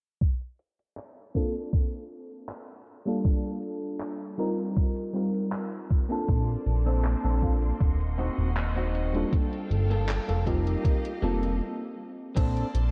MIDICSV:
0, 0, Header, 1, 7, 480
1, 0, Start_track
1, 0, Key_signature, -2, "major"
1, 0, Tempo, 759494
1, 135, Time_signature, 4, 2, 24, 8
1, 8161, End_track
2, 0, Start_track
2, 0, Title_t, "String section"
2, 0, Program_c, 0, 48
2, 3976, Note_on_c, 0, 58, 70
2, 3976, Note_on_c, 0, 74, 67
2, 3976, Note_on_c, 0, 81, 64
2, 3976, Note_on_c, 0, 84, 81
2, 4926, Note_off_c, 0, 74, 0
2, 4926, Note_off_c, 0, 81, 0
2, 4935, Note_on_c, 0, 78, 65
2, 4937, Note_on_c, 0, 75, 66
2, 5876, Note_off_c, 0, 58, 0
2, 5877, Note_off_c, 0, 84, 0
2, 5886, Note_off_c, 0, 78, 0
2, 5887, Note_off_c, 0, 75, 0
2, 5901, Note_on_c, 0, 79, 64
2, 5902, Note_on_c, 0, 69, 71
2, 5903, Note_on_c, 0, 77, 64
2, 6611, Note_off_c, 0, 79, 0
2, 6612, Note_off_c, 0, 69, 0
2, 6612, Note_off_c, 0, 77, 0
2, 6620, Note_on_c, 0, 67, 69
2, 6620, Note_on_c, 0, 77, 66
2, 6621, Note_on_c, 0, 75, 66
2, 7331, Note_off_c, 0, 67, 0
2, 7331, Note_off_c, 0, 75, 0
2, 7331, Note_off_c, 0, 77, 0
2, 7818, Note_on_c, 0, 74, 66
2, 7819, Note_on_c, 0, 58, 72
2, 7819, Note_on_c, 0, 81, 66
2, 7820, Note_on_c, 0, 84, 82
2, 8161, Note_off_c, 0, 58, 0
2, 8161, Note_off_c, 0, 74, 0
2, 8161, Note_off_c, 0, 81, 0
2, 8161, Note_off_c, 0, 84, 0
2, 8161, End_track
3, 0, Start_track
3, 0, Title_t, "Clean electric guitar"
3, 0, Program_c, 1, 27
3, 4335, Note_on_c, 1, 60, 107
3, 4339, Note_on_c, 1, 62, 102
3, 4343, Note_on_c, 1, 69, 102
3, 4453, Note_off_c, 1, 60, 0
3, 4455, Note_off_c, 1, 62, 0
3, 4456, Note_off_c, 1, 69, 0
3, 4575, Note_on_c, 1, 60, 76
3, 4578, Note_on_c, 1, 62, 74
3, 4581, Note_on_c, 1, 69, 85
3, 4755, Note_off_c, 1, 60, 0
3, 4757, Note_off_c, 1, 62, 0
3, 4758, Note_off_c, 1, 69, 0
3, 5169, Note_on_c, 1, 60, 98
3, 5172, Note_on_c, 1, 63, 95
3, 5175, Note_on_c, 1, 66, 119
3, 5355, Note_off_c, 1, 60, 0
3, 5356, Note_off_c, 1, 63, 0
3, 5358, Note_off_c, 1, 66, 0
3, 5538, Note_on_c, 1, 60, 82
3, 5540, Note_on_c, 1, 63, 77
3, 5544, Note_on_c, 1, 66, 90
3, 5894, Note_off_c, 1, 60, 0
3, 5895, Note_off_c, 1, 63, 0
3, 5897, Note_off_c, 1, 66, 0
3, 6258, Note_on_c, 1, 58, 110
3, 6261, Note_on_c, 1, 65, 101
3, 6266, Note_on_c, 1, 69, 101
3, 6374, Note_off_c, 1, 58, 0
3, 6376, Note_off_c, 1, 65, 0
3, 6377, Note_off_c, 1, 69, 0
3, 6496, Note_on_c, 1, 58, 84
3, 6501, Note_on_c, 1, 65, 74
3, 6504, Note_on_c, 1, 69, 90
3, 6604, Note_off_c, 1, 58, 0
3, 6611, Note_on_c, 1, 58, 90
3, 6612, Note_off_c, 1, 65, 0
3, 6614, Note_on_c, 1, 63, 78
3, 6616, Note_off_c, 1, 69, 0
3, 6618, Note_on_c, 1, 67, 92
3, 7001, Note_off_c, 1, 58, 0
3, 7003, Note_off_c, 1, 63, 0
3, 7005, Note_off_c, 1, 67, 0
3, 7093, Note_on_c, 1, 58, 109
3, 7096, Note_on_c, 1, 63, 99
3, 7099, Note_on_c, 1, 69, 115
3, 7276, Note_off_c, 1, 58, 0
3, 7278, Note_off_c, 1, 63, 0
3, 7280, Note_off_c, 1, 69, 0
3, 7809, Note_on_c, 1, 60, 105
3, 7813, Note_on_c, 1, 62, 101
3, 7817, Note_on_c, 1, 69, 117
3, 7995, Note_off_c, 1, 60, 0
3, 7997, Note_off_c, 1, 62, 0
3, 7998, Note_off_c, 1, 69, 0
3, 8161, End_track
4, 0, Start_track
4, 0, Title_t, "FM electric piano"
4, 0, Program_c, 2, 5
4, 850, Note_on_c, 2, 58, 77
4, 852, Note_on_c, 2, 60, 73
4, 856, Note_on_c, 2, 62, 70
4, 858, Note_on_c, 2, 65, 72
4, 862, Note_on_c, 2, 69, 87
4, 975, Note_off_c, 2, 58, 0
4, 976, Note_off_c, 2, 60, 0
4, 978, Note_off_c, 2, 62, 0
4, 979, Note_off_c, 2, 65, 0
4, 981, Note_off_c, 2, 69, 0
4, 1930, Note_on_c, 2, 55, 86
4, 1935, Note_on_c, 2, 58, 75
4, 1939, Note_on_c, 2, 62, 77
4, 1944, Note_on_c, 2, 65, 74
4, 1948, Note_on_c, 2, 69, 94
4, 2742, Note_off_c, 2, 55, 0
4, 2745, Note_off_c, 2, 58, 0
4, 2747, Note_off_c, 2, 62, 0
4, 2749, Note_off_c, 2, 65, 0
4, 2752, Note_off_c, 2, 69, 0
4, 2765, Note_on_c, 2, 55, 92
4, 2770, Note_on_c, 2, 60, 80
4, 2772, Note_on_c, 2, 63, 79
4, 2774, Note_on_c, 2, 65, 81
4, 2776, Note_on_c, 2, 70, 97
4, 3223, Note_off_c, 2, 55, 0
4, 3225, Note_off_c, 2, 60, 0
4, 3226, Note_off_c, 2, 63, 0
4, 3227, Note_off_c, 2, 65, 0
4, 3228, Note_off_c, 2, 70, 0
4, 3242, Note_on_c, 2, 55, 71
4, 3247, Note_on_c, 2, 60, 66
4, 3251, Note_on_c, 2, 63, 65
4, 3255, Note_on_c, 2, 65, 66
4, 3262, Note_on_c, 2, 70, 81
4, 3823, Note_off_c, 2, 55, 0
4, 3826, Note_off_c, 2, 60, 0
4, 3828, Note_off_c, 2, 63, 0
4, 3830, Note_off_c, 2, 65, 0
4, 3833, Note_off_c, 2, 70, 0
4, 3847, Note_on_c, 2, 58, 95
4, 3852, Note_on_c, 2, 60, 86
4, 3856, Note_on_c, 2, 62, 89
4, 3861, Note_on_c, 2, 65, 87
4, 3866, Note_on_c, 2, 69, 106
4, 4661, Note_off_c, 2, 58, 0
4, 4664, Note_off_c, 2, 60, 0
4, 4666, Note_off_c, 2, 62, 0
4, 4668, Note_off_c, 2, 65, 0
4, 4671, Note_off_c, 2, 69, 0
4, 4689, Note_on_c, 2, 58, 80
4, 4691, Note_on_c, 2, 60, 69
4, 4694, Note_on_c, 2, 62, 73
4, 4697, Note_on_c, 2, 65, 73
4, 4699, Note_on_c, 2, 69, 88
4, 4815, Note_off_c, 2, 58, 0
4, 4815, Note_off_c, 2, 60, 0
4, 4817, Note_off_c, 2, 62, 0
4, 4818, Note_off_c, 2, 65, 0
4, 4819, Note_off_c, 2, 69, 0
4, 5770, Note_on_c, 2, 55, 87
4, 5775, Note_on_c, 2, 58, 81
4, 5780, Note_on_c, 2, 62, 80
4, 5785, Note_on_c, 2, 65, 81
4, 5789, Note_on_c, 2, 69, 93
4, 6583, Note_off_c, 2, 55, 0
4, 6585, Note_off_c, 2, 58, 0
4, 6588, Note_off_c, 2, 62, 0
4, 6590, Note_off_c, 2, 65, 0
4, 6592, Note_off_c, 2, 69, 0
4, 6610, Note_on_c, 2, 55, 92
4, 6613, Note_on_c, 2, 60, 82
4, 6615, Note_on_c, 2, 63, 83
4, 6618, Note_on_c, 2, 65, 86
4, 6620, Note_on_c, 2, 70, 102
4, 7065, Note_off_c, 2, 55, 0
4, 7066, Note_off_c, 2, 60, 0
4, 7068, Note_off_c, 2, 63, 0
4, 7069, Note_off_c, 2, 65, 0
4, 7070, Note_off_c, 2, 70, 0
4, 7088, Note_on_c, 2, 55, 72
4, 7092, Note_on_c, 2, 60, 69
4, 7097, Note_on_c, 2, 63, 68
4, 7102, Note_on_c, 2, 65, 71
4, 7106, Note_on_c, 2, 58, 84
4, 7332, Note_off_c, 2, 55, 0
4, 7334, Note_off_c, 2, 60, 0
4, 7336, Note_off_c, 2, 63, 0
4, 7339, Note_off_c, 2, 65, 0
4, 7341, Note_off_c, 2, 58, 0
4, 8161, End_track
5, 0, Start_track
5, 0, Title_t, "Analog synth bass"
5, 0, Program_c, 3, 38
5, 3972, Note_on_c, 3, 34, 97
5, 4146, Note_off_c, 3, 34, 0
5, 4211, Note_on_c, 3, 34, 94
5, 4520, Note_off_c, 3, 34, 0
5, 4577, Note_on_c, 3, 34, 85
5, 4880, Note_off_c, 3, 34, 0
5, 4933, Note_on_c, 3, 27, 93
5, 5240, Note_off_c, 3, 27, 0
5, 5297, Note_on_c, 3, 27, 85
5, 5840, Note_off_c, 3, 27, 0
5, 6134, Note_on_c, 3, 31, 96
5, 6441, Note_off_c, 3, 31, 0
5, 6500, Note_on_c, 3, 29, 84
5, 6801, Note_off_c, 3, 29, 0
5, 7094, Note_on_c, 3, 29, 94
5, 7335, Note_off_c, 3, 29, 0
5, 7814, Note_on_c, 3, 34, 98
5, 7987, Note_off_c, 3, 34, 0
5, 8055, Note_on_c, 3, 34, 100
5, 8161, Note_off_c, 3, 34, 0
5, 8161, End_track
6, 0, Start_track
6, 0, Title_t, "Muted clean electric guitar strokes"
6, 4929, Note_on_c, 9, 29, 30
6, 4992, Note_off_c, 9, 29, 0
6, 8161, End_track
7, 0, Start_track
7, 0, Title_t, "Drums"
7, 134, Note_on_c, 9, 36, 105
7, 135, Note_on_c, 9, 42, 88
7, 197, Note_off_c, 9, 36, 0
7, 198, Note_off_c, 9, 42, 0
7, 260, Note_on_c, 9, 42, 39
7, 323, Note_off_c, 9, 42, 0
7, 374, Note_on_c, 9, 42, 66
7, 437, Note_off_c, 9, 42, 0
7, 500, Note_on_c, 9, 42, 39
7, 563, Note_off_c, 9, 42, 0
7, 615, Note_on_c, 9, 39, 103
7, 615, Note_on_c, 9, 42, 85
7, 678, Note_off_c, 9, 39, 0
7, 678, Note_off_c, 9, 42, 0
7, 740, Note_on_c, 9, 42, 37
7, 803, Note_off_c, 9, 42, 0
7, 854, Note_on_c, 9, 36, 55
7, 856, Note_on_c, 9, 42, 60
7, 917, Note_off_c, 9, 36, 0
7, 919, Note_off_c, 9, 42, 0
7, 981, Note_on_c, 9, 42, 36
7, 1044, Note_off_c, 9, 42, 0
7, 1093, Note_on_c, 9, 36, 103
7, 1095, Note_on_c, 9, 42, 86
7, 1157, Note_off_c, 9, 36, 0
7, 1158, Note_off_c, 9, 42, 0
7, 1222, Note_on_c, 9, 42, 36
7, 1285, Note_off_c, 9, 42, 0
7, 1460, Note_on_c, 9, 42, 36
7, 1523, Note_off_c, 9, 42, 0
7, 1573, Note_on_c, 9, 39, 112
7, 1573, Note_on_c, 9, 42, 87
7, 1637, Note_off_c, 9, 39, 0
7, 1637, Note_off_c, 9, 42, 0
7, 1699, Note_on_c, 9, 42, 37
7, 1762, Note_off_c, 9, 42, 0
7, 1813, Note_on_c, 9, 42, 63
7, 1877, Note_off_c, 9, 42, 0
7, 1938, Note_on_c, 9, 42, 38
7, 2001, Note_off_c, 9, 42, 0
7, 2052, Note_on_c, 9, 42, 87
7, 2053, Note_on_c, 9, 36, 114
7, 2115, Note_off_c, 9, 42, 0
7, 2116, Note_off_c, 9, 36, 0
7, 2176, Note_on_c, 9, 42, 40
7, 2239, Note_off_c, 9, 42, 0
7, 2292, Note_on_c, 9, 42, 66
7, 2355, Note_off_c, 9, 42, 0
7, 2415, Note_on_c, 9, 42, 39
7, 2478, Note_off_c, 9, 42, 0
7, 2531, Note_on_c, 9, 39, 113
7, 2531, Note_on_c, 9, 42, 87
7, 2595, Note_off_c, 9, 39, 0
7, 2595, Note_off_c, 9, 42, 0
7, 2657, Note_on_c, 9, 42, 39
7, 2720, Note_off_c, 9, 42, 0
7, 2771, Note_on_c, 9, 42, 62
7, 2834, Note_off_c, 9, 42, 0
7, 2897, Note_on_c, 9, 42, 36
7, 2960, Note_off_c, 9, 42, 0
7, 3012, Note_on_c, 9, 36, 107
7, 3013, Note_on_c, 9, 42, 90
7, 3075, Note_off_c, 9, 36, 0
7, 3076, Note_off_c, 9, 42, 0
7, 3137, Note_on_c, 9, 42, 39
7, 3200, Note_off_c, 9, 42, 0
7, 3378, Note_on_c, 9, 42, 36
7, 3441, Note_off_c, 9, 42, 0
7, 3491, Note_on_c, 9, 39, 111
7, 3491, Note_on_c, 9, 42, 89
7, 3554, Note_off_c, 9, 39, 0
7, 3554, Note_off_c, 9, 42, 0
7, 3617, Note_on_c, 9, 42, 39
7, 3680, Note_off_c, 9, 42, 0
7, 3731, Note_on_c, 9, 42, 65
7, 3732, Note_on_c, 9, 36, 100
7, 3794, Note_off_c, 9, 42, 0
7, 3795, Note_off_c, 9, 36, 0
7, 3856, Note_on_c, 9, 42, 37
7, 3919, Note_off_c, 9, 42, 0
7, 3971, Note_on_c, 9, 42, 86
7, 3972, Note_on_c, 9, 36, 117
7, 4034, Note_off_c, 9, 42, 0
7, 4036, Note_off_c, 9, 36, 0
7, 4095, Note_on_c, 9, 42, 38
7, 4158, Note_off_c, 9, 42, 0
7, 4212, Note_on_c, 9, 42, 66
7, 4275, Note_off_c, 9, 42, 0
7, 4338, Note_on_c, 9, 42, 39
7, 4401, Note_off_c, 9, 42, 0
7, 4454, Note_on_c, 9, 39, 119
7, 4454, Note_on_c, 9, 42, 88
7, 4517, Note_off_c, 9, 39, 0
7, 4517, Note_off_c, 9, 42, 0
7, 4579, Note_on_c, 9, 42, 37
7, 4642, Note_off_c, 9, 42, 0
7, 4693, Note_on_c, 9, 36, 61
7, 4694, Note_on_c, 9, 42, 64
7, 4756, Note_off_c, 9, 36, 0
7, 4758, Note_off_c, 9, 42, 0
7, 4819, Note_on_c, 9, 42, 36
7, 4882, Note_off_c, 9, 42, 0
7, 4933, Note_on_c, 9, 36, 115
7, 4933, Note_on_c, 9, 42, 90
7, 4996, Note_off_c, 9, 36, 0
7, 4996, Note_off_c, 9, 42, 0
7, 5060, Note_on_c, 9, 42, 38
7, 5123, Note_off_c, 9, 42, 0
7, 5300, Note_on_c, 9, 42, 36
7, 5363, Note_off_c, 9, 42, 0
7, 5415, Note_on_c, 9, 39, 114
7, 5415, Note_on_c, 9, 42, 89
7, 5478, Note_off_c, 9, 39, 0
7, 5478, Note_off_c, 9, 42, 0
7, 5540, Note_on_c, 9, 42, 36
7, 5604, Note_off_c, 9, 42, 0
7, 5656, Note_on_c, 9, 42, 63
7, 5719, Note_off_c, 9, 42, 0
7, 5780, Note_on_c, 9, 42, 36
7, 5843, Note_off_c, 9, 42, 0
7, 5894, Note_on_c, 9, 36, 120
7, 5895, Note_on_c, 9, 42, 82
7, 5957, Note_off_c, 9, 36, 0
7, 5958, Note_off_c, 9, 42, 0
7, 6022, Note_on_c, 9, 42, 37
7, 6085, Note_off_c, 9, 42, 0
7, 6138, Note_on_c, 9, 42, 62
7, 6201, Note_off_c, 9, 42, 0
7, 6263, Note_on_c, 9, 42, 36
7, 6326, Note_off_c, 9, 42, 0
7, 6376, Note_on_c, 9, 39, 119
7, 6376, Note_on_c, 9, 42, 84
7, 6439, Note_off_c, 9, 39, 0
7, 6439, Note_off_c, 9, 42, 0
7, 6503, Note_on_c, 9, 42, 36
7, 6566, Note_off_c, 9, 42, 0
7, 6615, Note_on_c, 9, 36, 61
7, 6617, Note_on_c, 9, 42, 61
7, 6678, Note_off_c, 9, 36, 0
7, 6681, Note_off_c, 9, 42, 0
7, 6743, Note_on_c, 9, 42, 35
7, 6806, Note_off_c, 9, 42, 0
7, 6855, Note_on_c, 9, 36, 112
7, 6857, Note_on_c, 9, 42, 83
7, 6918, Note_off_c, 9, 36, 0
7, 6920, Note_off_c, 9, 42, 0
7, 6983, Note_on_c, 9, 42, 39
7, 7046, Note_off_c, 9, 42, 0
7, 7224, Note_on_c, 9, 42, 34
7, 7287, Note_off_c, 9, 42, 0
7, 7815, Note_on_c, 9, 36, 116
7, 7818, Note_on_c, 9, 42, 93
7, 7818, Note_on_c, 9, 49, 90
7, 7879, Note_off_c, 9, 36, 0
7, 7881, Note_off_c, 9, 42, 0
7, 7881, Note_off_c, 9, 49, 0
7, 7943, Note_on_c, 9, 42, 40
7, 8006, Note_off_c, 9, 42, 0
7, 8056, Note_on_c, 9, 42, 69
7, 8120, Note_off_c, 9, 42, 0
7, 8161, End_track
0, 0, End_of_file